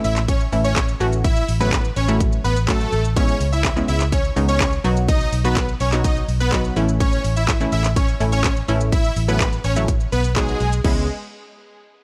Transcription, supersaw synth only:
0, 0, Header, 1, 2, 480
1, 0, Start_track
1, 0, Key_signature, 4, "minor"
1, 0, Tempo, 480000
1, 1245, Time_signature, 4, 2, 24, 8
1, 12036, End_track
2, 0, Start_track
2, 0, Title_t, "Supersaw synth"
2, 0, Program_c, 0, 81
2, 45, Note_on_c, 0, 76, 76
2, 53, Note_on_c, 0, 64, 62
2, 142, Note_off_c, 0, 76, 0
2, 146, Note_off_c, 0, 64, 0
2, 285, Note_on_c, 0, 73, 89
2, 293, Note_on_c, 0, 61, 70
2, 382, Note_off_c, 0, 73, 0
2, 387, Note_off_c, 0, 61, 0
2, 645, Note_on_c, 0, 73, 87
2, 654, Note_on_c, 0, 61, 63
2, 839, Note_off_c, 0, 73, 0
2, 844, Note_off_c, 0, 61, 0
2, 1245, Note_on_c, 0, 76, 97
2, 1253, Note_on_c, 0, 64, 75
2, 1439, Note_off_c, 0, 76, 0
2, 1444, Note_off_c, 0, 64, 0
2, 1605, Note_on_c, 0, 71, 83
2, 1612, Note_on_c, 0, 59, 66
2, 1799, Note_off_c, 0, 71, 0
2, 1803, Note_off_c, 0, 59, 0
2, 1963, Note_on_c, 0, 73, 79
2, 1971, Note_on_c, 0, 61, 61
2, 2060, Note_off_c, 0, 73, 0
2, 2065, Note_off_c, 0, 61, 0
2, 2444, Note_on_c, 0, 71, 81
2, 2452, Note_on_c, 0, 59, 60
2, 2541, Note_off_c, 0, 71, 0
2, 2546, Note_off_c, 0, 59, 0
2, 2683, Note_on_c, 0, 69, 101
2, 2691, Note_on_c, 0, 57, 78
2, 3022, Note_off_c, 0, 69, 0
2, 3027, Note_off_c, 0, 57, 0
2, 3166, Note_on_c, 0, 73, 107
2, 3174, Note_on_c, 0, 61, 86
2, 3359, Note_off_c, 0, 73, 0
2, 3364, Note_off_c, 0, 61, 0
2, 3525, Note_on_c, 0, 76, 72
2, 3534, Note_on_c, 0, 64, 56
2, 3719, Note_off_c, 0, 76, 0
2, 3724, Note_off_c, 0, 64, 0
2, 3886, Note_on_c, 0, 76, 78
2, 3893, Note_on_c, 0, 64, 64
2, 3982, Note_off_c, 0, 76, 0
2, 3987, Note_off_c, 0, 64, 0
2, 4124, Note_on_c, 0, 73, 78
2, 4133, Note_on_c, 0, 61, 60
2, 4221, Note_off_c, 0, 73, 0
2, 4227, Note_off_c, 0, 61, 0
2, 4485, Note_on_c, 0, 73, 84
2, 4493, Note_on_c, 0, 61, 64
2, 4679, Note_off_c, 0, 73, 0
2, 4684, Note_off_c, 0, 61, 0
2, 5085, Note_on_c, 0, 75, 112
2, 5092, Note_on_c, 0, 63, 87
2, 5279, Note_off_c, 0, 75, 0
2, 5283, Note_off_c, 0, 63, 0
2, 5446, Note_on_c, 0, 71, 76
2, 5454, Note_on_c, 0, 59, 62
2, 5639, Note_off_c, 0, 71, 0
2, 5644, Note_off_c, 0, 59, 0
2, 5806, Note_on_c, 0, 73, 78
2, 5813, Note_on_c, 0, 61, 61
2, 5902, Note_off_c, 0, 73, 0
2, 5907, Note_off_c, 0, 61, 0
2, 6044, Note_on_c, 0, 75, 80
2, 6052, Note_on_c, 0, 63, 63
2, 6141, Note_off_c, 0, 75, 0
2, 6146, Note_off_c, 0, 63, 0
2, 6404, Note_on_c, 0, 71, 91
2, 6412, Note_on_c, 0, 59, 68
2, 6598, Note_off_c, 0, 71, 0
2, 6603, Note_off_c, 0, 59, 0
2, 7004, Note_on_c, 0, 73, 104
2, 7012, Note_on_c, 0, 61, 85
2, 7198, Note_off_c, 0, 73, 0
2, 7203, Note_off_c, 0, 61, 0
2, 7364, Note_on_c, 0, 76, 78
2, 7372, Note_on_c, 0, 64, 61
2, 7558, Note_off_c, 0, 76, 0
2, 7563, Note_off_c, 0, 64, 0
2, 7725, Note_on_c, 0, 76, 76
2, 7734, Note_on_c, 0, 64, 60
2, 7822, Note_off_c, 0, 76, 0
2, 7827, Note_off_c, 0, 64, 0
2, 7964, Note_on_c, 0, 73, 88
2, 7972, Note_on_c, 0, 61, 66
2, 8061, Note_off_c, 0, 73, 0
2, 8066, Note_off_c, 0, 61, 0
2, 8323, Note_on_c, 0, 73, 85
2, 8331, Note_on_c, 0, 61, 65
2, 8517, Note_off_c, 0, 73, 0
2, 8522, Note_off_c, 0, 61, 0
2, 8924, Note_on_c, 0, 76, 101
2, 8931, Note_on_c, 0, 64, 78
2, 9118, Note_off_c, 0, 76, 0
2, 9122, Note_off_c, 0, 64, 0
2, 9284, Note_on_c, 0, 71, 86
2, 9293, Note_on_c, 0, 59, 66
2, 9478, Note_off_c, 0, 71, 0
2, 9483, Note_off_c, 0, 59, 0
2, 9644, Note_on_c, 0, 73, 79
2, 9652, Note_on_c, 0, 61, 63
2, 9741, Note_off_c, 0, 73, 0
2, 9746, Note_off_c, 0, 61, 0
2, 10123, Note_on_c, 0, 71, 80
2, 10130, Note_on_c, 0, 59, 61
2, 10220, Note_off_c, 0, 71, 0
2, 10225, Note_off_c, 0, 59, 0
2, 10363, Note_on_c, 0, 68, 99
2, 10371, Note_on_c, 0, 56, 81
2, 10702, Note_off_c, 0, 68, 0
2, 10706, Note_off_c, 0, 56, 0
2, 10844, Note_on_c, 0, 56, 87
2, 11068, Note_off_c, 0, 56, 0
2, 12036, End_track
0, 0, End_of_file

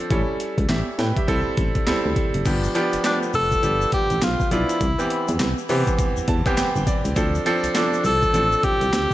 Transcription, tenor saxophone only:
0, 0, Header, 1, 2, 480
1, 0, Start_track
1, 0, Tempo, 588235
1, 86, Time_signature, 4, 2, 24, 8
1, 7457, End_track
2, 0, Start_track
2, 0, Title_t, "Tenor saxophone"
2, 0, Program_c, 0, 66
2, 2498, Note_on_c, 0, 62, 79
2, 2603, Note_off_c, 0, 62, 0
2, 2735, Note_on_c, 0, 69, 119
2, 3178, Note_off_c, 0, 69, 0
2, 3213, Note_on_c, 0, 67, 95
2, 3453, Note_on_c, 0, 65, 92
2, 3466, Note_off_c, 0, 67, 0
2, 3688, Note_off_c, 0, 65, 0
2, 3693, Note_on_c, 0, 64, 85
2, 4377, Note_off_c, 0, 64, 0
2, 6334, Note_on_c, 0, 62, 76
2, 6553, Note_off_c, 0, 62, 0
2, 6575, Note_on_c, 0, 69, 107
2, 7053, Note_on_c, 0, 67, 98
2, 7066, Note_off_c, 0, 69, 0
2, 7457, Note_off_c, 0, 67, 0
2, 7457, End_track
0, 0, End_of_file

